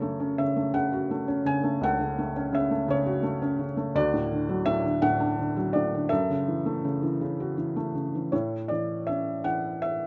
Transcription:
Already playing: F#2 C#3 A4 C#5
0.02 A3
0.20 C#4
0.38 C#3 E5
0.56 A3
0.74 C#3 F#5
0.93 F#4
1.11 A3
1.28 C#4
1.45 C#3 G#5
1.63 A3
1.81 C#2 A4 F#5
2.00 C#3
2.18 A3
2.36 C#4
2.53 C#3 E5
2.71 A3
2.88 C#3 C#5
3.06 F#4
3.23 A3
3.42 C#4
3.59 C#3
3.77 A3
3.95 D2 F#4 D5
4.14 A2
4.32 D3
4.49 F#3
4.66 A2 E5
4.84 D3
5.02 A2 F#5
5.20 D4
5.39 D3
5.57 F#3
5.73 A2 D5
5.94 D3
6.09 F#2 A4 E5
6.30 C#3
6.48 E3
6.66 A3
6.84 C#3
7.02 E3
7.21 C#3
7.40 F#4
7.57 E3
7.76 A3
7.95 C#3
8.15 E3
8.32 A2 E4 C#5
8.68 E3 D5
9.07 C#4 E5
9.44 E3 F#5
9.82 E5

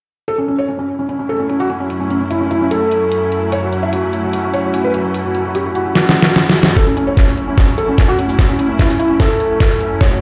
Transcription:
0.28 F#2 F#3 A3 C#4 E4 A4, closed hi-hat
0.38 C#4
0.48 C#4, closed hi-hat
0.58 C#5
0.68 C#4, closed hi-hat
0.79 C#4
0.89 closed hi-hat
0.99 C#4
1.09 C#4, closed hi-hat
1.19 C#4
1.29 A4, closed hi-hat
1.40 C#4
1.50 C#4, closed hi-hat
1.60 F#4
1.70 C#4, closed hi-hat
1.80 C#4
1.90 closed hi-hat
2.00 C#4
2.10 C#4, closed hi-hat
2.21 C#4
2.31 E4, closed hi-hat
2.41 C#4
2.51 E4, closed hi-hat
2.61 C#4
2.71 A4, closed hi-hat
2.91 closed hi-hat
3.12 closed hi-hat
3.32 closed hi-hat
3.52 C#5, closed hi-hat
3.63 F#4
3.72 F#4, closed hi-hat
3.83 E5
3.93 F#4, closed hi-hat
4.03 F#4
4.13 closed hi-hat
4.23 F#4
4.33 F#4, closed hi-hat
4.44 F#4
4.54 C#5, closed hi-hat
4.64 F#4
4.74 F#4, closed hi-hat
4.84 B4
4.94 F#4, closed hi-hat
5.04 F#4
5.14 closed hi-hat
5.25 F#4
5.35 F#4, closed hi-hat
5.45 F#4
5.55 G4, closed hi-hat
5.65 F#4
5.75 F#4, closed hi-hat
5.86 F#4
5.95 F#4, snare, closed hi-hat, swell
6.09 snare
6.16 closed hi-hat
6.22 snare
6.36 snare, closed hi-hat
6.49 snare
6.56 closed hi-hat
6.63 snare
6.77 F#2 F#3 A3 C#4 E4 A4, kick, snare, closed hi-hat
6.87 C#4
6.97 C#4, closed hi-hat
7.07 C#5
7.17 C#4, kick, snare, closed hi-hat
7.27 C#4
7.37 closed hi-hat
7.48 C#4
7.58 C#4, kick, snare, closed hi-hat
7.68 C#4
7.78 A4, closed hi-hat
7.88 C#4
7.98 C#4, kick, snare, closed hi-hat
8.08 F#4
8.18 C#4, closed hi-hat
8.29 C#4, shaker
8.39 kick, snare, closed hi-hat
8.49 C#4
8.59 C#4, closed hi-hat
8.69 C#4
8.79 E4, kick, snare, closed hi-hat
8.89 C#4, shaker
8.99 E4, closed hi-hat
9.10 C#4
9.20 A4, kick, snare, closed hi-hat
9.40 closed hi-hat
9.60 kick, snare, closed hi-hat
9.81 closed hi-hat
10.01 C#5, kick, snare, closed hi-hat
10.11 F#4

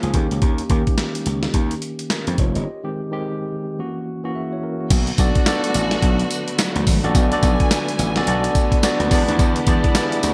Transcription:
Already playing: F3 A#3 C#4 G#4
0.03 C#2 F3 A#3 C#4 G#4, closed hi-hat
0.14 D#2 D#3 A#3 C#4 G4, kick, closed hi-hat
0.31 C#2, closed hi-hat
0.42 D#2, kick, closed hi-hat
0.58 closed hi-hat
0.70 D#2 D#3 A#3 C#4 G4, kick, closed hi-hat
0.87 kick, closed hi-hat
0.98 snare, clap, closed hi-hat
1.15 closed hi-hat
1.26 C#2, closed hi-hat
1.43 snare, closed hi-hat
1.54 D#2, kick, closed hi-hat
1.71 closed hi-hat
1.82 closed hi-hat
1.99 closed hi-hat
2.10 C#4 A#4, snare, clap, closed hi-hat
2.27 F2 D#4 C5, closed hi-hat
2.38 F1 F4 C#5, kick, closed hi-hat
2.55 G1 G4 D#5, closed hi-hat
2.84 D#3 G#3 C4 G4
3.12 D#3 G#3 C4 G4
3.79 E3 A#3 C#4 F#4
4.24 E3 A#3 C#4 F#4
4.35 G#4 E5
4.53 E4 C#5
4.63 C#4 A#4
4.80 A#3 F#4
4.90 B1 D3 F#3 A3 B3 F#4, kick, closed hi-hat, crash, tambourine
5.07 closed hi-hat
5.18 B1 B3 D4 F#4 A4 D5, kick, closed hi-hat, tambourine
5.35 kick, closed hi-hat
5.46 B3 D4 F#4 A4 D5, snare, clap, closed hi-hat, tambourine
5.64 closed hi-hat
5.74 A1, closed hi-hat, tambourine
5.91 snare, closed hi-hat
6.02 B1, kick, closed hi-hat
6.19 closed hi-hat
6.31 closed hi-hat, tambourine
6.48 closed hi-hat
6.58 snare, clap, closed hi-hat, tambourine
6.76 D2, closed hi-hat
6.87 G#1, kick, open hi-hat, tambourine
7.04 A1 B3 D4 F#4 A4 D5, closed hi-hat
7.15 B1 G#5, kick, closed hi-hat, tambourine
7.32 B3 D4 F#4 A4 D5, closed hi-hat
7.43 B1, kick, closed hi-hat, tambourine
7.60 kick, closed hi-hat
7.71 snare, clap, closed hi-hat, tambourine
7.88 closed hi-hat
7.99 A1, closed hi-hat, tambourine
8.16 B3 D4 F#4 A4 D5, snare, closed hi-hat
8.27 B1 B3 D4 F#4 A4 D5, closed hi-hat
8.44 closed hi-hat
8.55 kick, closed hi-hat, tambourine
8.72 kick, closed hi-hat
8.83 B3 D4 F#4 A4 D5, snare, clap, closed hi-hat, tambourine
9.00 D2, closed hi-hat
9.11 E2 E3 G#3 B3 D4 E4 G#4 D5, kick, open hi-hat, tambourine
9.28 D2, closed hi-hat
9.39 E2, kick, closed hi-hat, tambourine
9.56 closed hi-hat
9.67 E2 B3 D4 E4 G#4 D5, kick, closed hi-hat, tambourine
9.84 kick, closed hi-hat
9.95 B3 D4 E4 G4 D5, snare, clap, closed hi-hat, tambourine
10.03 G#4
10.12 closed hi-hat
10.23 D2, closed hi-hat, tambourine

